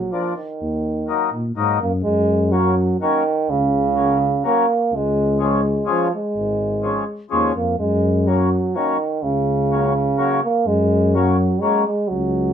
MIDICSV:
0, 0, Header, 1, 4, 480
1, 0, Start_track
1, 0, Key_signature, 6, "major"
1, 0, Tempo, 479616
1, 594, Time_signature, 3, 2, 24, 8
1, 12542, End_track
2, 0, Start_track
2, 0, Title_t, "Accordion"
2, 0, Program_c, 0, 21
2, 121, Note_on_c, 0, 53, 59
2, 123, Note_on_c, 0, 58, 61
2, 129, Note_on_c, 0, 62, 64
2, 335, Note_off_c, 0, 53, 0
2, 336, Note_off_c, 0, 58, 0
2, 339, Note_off_c, 0, 62, 0
2, 1076, Note_on_c, 0, 54, 59
2, 1076, Note_on_c, 0, 58, 44
2, 1088, Note_on_c, 0, 63, 67
2, 1296, Note_off_c, 0, 54, 0
2, 1296, Note_off_c, 0, 58, 0
2, 1302, Note_off_c, 0, 63, 0
2, 1567, Note_on_c, 0, 54, 73
2, 1569, Note_on_c, 0, 63, 76
2, 1571, Note_on_c, 0, 58, 61
2, 1788, Note_off_c, 0, 54, 0
2, 1789, Note_off_c, 0, 63, 0
2, 1790, Note_off_c, 0, 58, 0
2, 2522, Note_on_c, 0, 54, 52
2, 2525, Note_on_c, 0, 58, 48
2, 2525, Note_on_c, 0, 61, 55
2, 2748, Note_off_c, 0, 54, 0
2, 2749, Note_off_c, 0, 58, 0
2, 2749, Note_off_c, 0, 61, 0
2, 3014, Note_on_c, 0, 54, 68
2, 3021, Note_on_c, 0, 58, 62
2, 3021, Note_on_c, 0, 61, 77
2, 3232, Note_off_c, 0, 54, 0
2, 3235, Note_off_c, 0, 58, 0
2, 3235, Note_off_c, 0, 61, 0
2, 3959, Note_on_c, 0, 54, 47
2, 3963, Note_on_c, 0, 58, 46
2, 3965, Note_on_c, 0, 61, 56
2, 4181, Note_off_c, 0, 54, 0
2, 4183, Note_off_c, 0, 58, 0
2, 4184, Note_off_c, 0, 61, 0
2, 4437, Note_on_c, 0, 54, 64
2, 4443, Note_on_c, 0, 58, 59
2, 4451, Note_on_c, 0, 61, 78
2, 4658, Note_off_c, 0, 54, 0
2, 4661, Note_off_c, 0, 58, 0
2, 4665, Note_off_c, 0, 61, 0
2, 5394, Note_on_c, 0, 53, 57
2, 5400, Note_on_c, 0, 56, 42
2, 5401, Note_on_c, 0, 61, 63
2, 5611, Note_off_c, 0, 53, 0
2, 5614, Note_off_c, 0, 56, 0
2, 5614, Note_off_c, 0, 61, 0
2, 5858, Note_on_c, 0, 53, 68
2, 5866, Note_on_c, 0, 56, 65
2, 5867, Note_on_c, 0, 61, 83
2, 6081, Note_off_c, 0, 53, 0
2, 6085, Note_off_c, 0, 56, 0
2, 6086, Note_off_c, 0, 61, 0
2, 6826, Note_on_c, 0, 53, 60
2, 6833, Note_on_c, 0, 56, 53
2, 6839, Note_on_c, 0, 61, 58
2, 7046, Note_off_c, 0, 53, 0
2, 7049, Note_off_c, 0, 56, 0
2, 7053, Note_off_c, 0, 61, 0
2, 7307, Note_on_c, 0, 53, 74
2, 7311, Note_on_c, 0, 56, 68
2, 7315, Note_on_c, 0, 61, 86
2, 7529, Note_off_c, 0, 53, 0
2, 7530, Note_off_c, 0, 56, 0
2, 7533, Note_off_c, 0, 61, 0
2, 8275, Note_on_c, 0, 54, 51
2, 8279, Note_on_c, 0, 58, 51
2, 8287, Note_on_c, 0, 61, 51
2, 8497, Note_off_c, 0, 54, 0
2, 8499, Note_off_c, 0, 58, 0
2, 8504, Note_off_c, 0, 61, 0
2, 8757, Note_on_c, 0, 54, 61
2, 8757, Note_on_c, 0, 58, 59
2, 8760, Note_on_c, 0, 61, 74
2, 8979, Note_off_c, 0, 54, 0
2, 8979, Note_off_c, 0, 58, 0
2, 8981, Note_off_c, 0, 61, 0
2, 9715, Note_on_c, 0, 54, 54
2, 9720, Note_on_c, 0, 58, 51
2, 9726, Note_on_c, 0, 61, 62
2, 9937, Note_off_c, 0, 54, 0
2, 9940, Note_off_c, 0, 58, 0
2, 9943, Note_off_c, 0, 61, 0
2, 10183, Note_on_c, 0, 58, 70
2, 10185, Note_on_c, 0, 54, 74
2, 10192, Note_on_c, 0, 61, 85
2, 10410, Note_off_c, 0, 58, 0
2, 10411, Note_off_c, 0, 54, 0
2, 10415, Note_off_c, 0, 61, 0
2, 11150, Note_on_c, 0, 54, 49
2, 11158, Note_on_c, 0, 58, 51
2, 11163, Note_on_c, 0, 61, 68
2, 11369, Note_off_c, 0, 54, 0
2, 11373, Note_off_c, 0, 58, 0
2, 11376, Note_off_c, 0, 61, 0
2, 11626, Note_on_c, 0, 54, 70
2, 11630, Note_on_c, 0, 58, 61
2, 11631, Note_on_c, 0, 61, 70
2, 11845, Note_off_c, 0, 54, 0
2, 11848, Note_off_c, 0, 58, 0
2, 11848, Note_off_c, 0, 61, 0
2, 12542, End_track
3, 0, Start_track
3, 0, Title_t, "Euphonium"
3, 0, Program_c, 1, 58
3, 0, Note_on_c, 1, 54, 80
3, 121, Note_on_c, 1, 53, 76
3, 136, Note_off_c, 1, 54, 0
3, 354, Note_off_c, 1, 53, 0
3, 360, Note_on_c, 1, 51, 70
3, 1527, Note_off_c, 1, 51, 0
3, 1802, Note_on_c, 1, 58, 77
3, 1913, Note_off_c, 1, 58, 0
3, 2041, Note_on_c, 1, 56, 102
3, 2519, Note_on_c, 1, 54, 84
3, 2534, Note_off_c, 1, 56, 0
3, 3009, Note_off_c, 1, 54, 0
3, 3013, Note_on_c, 1, 51, 98
3, 3500, Note_on_c, 1, 49, 106
3, 3515, Note_off_c, 1, 51, 0
3, 4451, Note_off_c, 1, 49, 0
3, 4463, Note_on_c, 1, 58, 94
3, 4959, Note_on_c, 1, 56, 100
3, 4974, Note_off_c, 1, 58, 0
3, 5416, Note_off_c, 1, 56, 0
3, 5426, Note_on_c, 1, 56, 77
3, 5855, Note_off_c, 1, 56, 0
3, 5906, Note_on_c, 1, 53, 83
3, 6113, Note_off_c, 1, 53, 0
3, 6156, Note_on_c, 1, 56, 84
3, 7264, Note_off_c, 1, 56, 0
3, 7551, Note_on_c, 1, 58, 82
3, 7777, Note_off_c, 1, 58, 0
3, 7798, Note_on_c, 1, 56, 87
3, 8288, Note_on_c, 1, 54, 78
3, 8303, Note_off_c, 1, 56, 0
3, 8771, Note_on_c, 1, 51, 91
3, 8786, Note_off_c, 1, 54, 0
3, 9232, Note_on_c, 1, 49, 93
3, 9247, Note_off_c, 1, 51, 0
3, 10437, Note_off_c, 1, 49, 0
3, 10446, Note_on_c, 1, 58, 97
3, 10675, Note_on_c, 1, 56, 107
3, 10690, Note_off_c, 1, 58, 0
3, 11163, Note_on_c, 1, 54, 86
3, 11178, Note_off_c, 1, 56, 0
3, 11622, Note_on_c, 1, 56, 93
3, 11637, Note_off_c, 1, 54, 0
3, 11868, Note_off_c, 1, 56, 0
3, 11878, Note_on_c, 1, 56, 86
3, 12090, Note_on_c, 1, 54, 84
3, 12105, Note_off_c, 1, 56, 0
3, 12542, Note_off_c, 1, 54, 0
3, 12542, End_track
4, 0, Start_track
4, 0, Title_t, "Tuba"
4, 0, Program_c, 2, 58
4, 608, Note_on_c, 2, 39, 71
4, 1076, Note_off_c, 2, 39, 0
4, 1320, Note_on_c, 2, 46, 61
4, 1541, Note_off_c, 2, 46, 0
4, 1559, Note_on_c, 2, 44, 71
4, 1784, Note_off_c, 2, 44, 0
4, 1810, Note_on_c, 2, 42, 73
4, 2029, Note_off_c, 2, 42, 0
4, 2055, Note_on_c, 2, 42, 84
4, 2992, Note_off_c, 2, 42, 0
4, 3499, Note_on_c, 2, 37, 72
4, 4426, Note_off_c, 2, 37, 0
4, 4925, Note_on_c, 2, 37, 85
4, 5853, Note_off_c, 2, 37, 0
4, 6362, Note_on_c, 2, 32, 70
4, 6983, Note_off_c, 2, 32, 0
4, 7326, Note_on_c, 2, 39, 78
4, 7539, Note_off_c, 2, 39, 0
4, 7564, Note_on_c, 2, 41, 71
4, 7777, Note_off_c, 2, 41, 0
4, 7791, Note_on_c, 2, 42, 85
4, 8736, Note_off_c, 2, 42, 0
4, 9243, Note_on_c, 2, 37, 77
4, 10177, Note_off_c, 2, 37, 0
4, 10674, Note_on_c, 2, 42, 91
4, 11605, Note_off_c, 2, 42, 0
4, 12117, Note_on_c, 2, 37, 81
4, 12542, Note_off_c, 2, 37, 0
4, 12542, End_track
0, 0, End_of_file